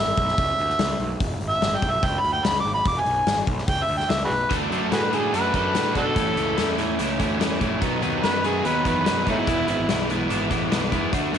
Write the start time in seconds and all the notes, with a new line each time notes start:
Already playing: G#1
0.00 E5
0.17 B1, kick, open hi-hat
0.28 snare
0.38 C#2, kick, open hi-hat
0.59 D2, open hi-hat
0.69 snare
0.79 C#2, snare, open hi-hat
0.99 B1, open hi-hat
1.20 E1, kick, open hi-hat
1.41 G#1, open hi-hat
1.49 E5
1.61 G#1, snare, open hi-hat
1.77 G5
1.82 B1, kick, open hi-hat
1.91 E5
2.03 C#2 G5, kick, open hi-hat
2.20 B5
2.24 D2, open hi-hat
2.33 G5
2.44 C#2 B5, snare, open hi-hat
2.60 D6
2.65 G#1, open hi-hat
2.74 B5
2.86 E1 D6, kick, open hi-hat
3.00 G#5
3.06 B1, open hi-hat
3.26 G#1, snare, open hi-hat
3.47 B1, kick, open hi-hat
3.58 snare
3.68 C#2 G5, kick, open hi-hat
3.83 E5
3.88 D2, open hi-hat
3.97 G5, snare
4.09 C#2 E5, snare, open hi-hat
4.25 F#4 G#4 B4
4.30 B1, open hi-hat
4.49 D2 D3 A3 D4 F#4 A4, kick, closed hi-hat
4.70 F#2 D3 A3 D4 F#4 A4, closed hi-hat
4.90 A2 D3 A3 D4 F#4 G#4 A4 B4, snare, closed hi-hat
5.11 D3 A3 D4 F#4 G#4 A4, closed hi-hat
5.32 F#2 D3 A3 D4 F#4 A4 B4, closed hi-hat
5.54 F#2 D3 A3 D4 F#4 A4 B4, kick, closed hi-hat
5.74 A2 D3 A3 D4 F#4 A4, snare, closed hi-hat
5.95 B2 D3 A3 D4 F#4 A4, kick, closed hi-hat
6.15 A1 A2 E3 A3 C#4 E4, kick, closed hi-hat
6.35 C#2 A2 E3 A3 C#4 E4, closed hi-hat
6.56 E2 A2 E3 A3 C#4 E4, snare, closed hi-hat
6.77 A2 E3 A3 C#4 E4, closed hi-hat
6.99 C#2 A2 E3 A3 C#4 E4, closed hi-hat
7.19 D2 A2 E3 A3 C#4 E4, kick, closed hi-hat
7.39 E2 A2 E3 A3 C#4 E4, snare, closed hi-hat
7.60 A#1 A2 E3 A3 C#4 E4, kick, closed hi-hat
7.80 B1 B2 D#3 F#3 B3 D#4, kick, closed hi-hat
8.01 D#2 B2 D#3 F#3 B3 D#4, closed hi-hat
8.23 F#2 B2 D#3 F#3 B3 D#4 B4, snare, closed hi-hat
8.43 B2 D#3 F#3 B3 D#4 G#4, closed hi-hat
8.65 D#2 B2 D#3 F#3 B3 D#4 B4, closed hi-hat
8.85 E2 B2 D#3 F#3 B3 D#4 B4, kick, closed hi-hat
9.05 F#2 B2 D#3 F#3 B3 D#4, snare, closed hi-hat
9.27 G#2 B2 D#3 F#3 A3 B3 C#4 D#4 E4, kick, closed hi-hat
9.47 E1 E3 G#3 B3 E4, kick, closed hi-hat
9.68 G#1 E3 G#3 B3 E4, closed hi-hat
9.89 B1 E3 G#3 B3 E4, snare, closed hi-hat
10.10 E3 G#3 B3 E4, closed hi-hat
10.30 G#1 E3 G#3 B3 E4, closed hi-hat
10.50 A1 E3 G#3 B3 E4, kick, closed hi-hat
10.71 B1 E3 G#3 B3 E4, snare, closed hi-hat
10.92 E2 E3 G#3 B3 E4, kick, closed hi-hat
11.12 D2 D3 A3 D4 F#4, kick, closed hi-hat
11.33 F#2 D3 A3 D4 F#4, closed hi-hat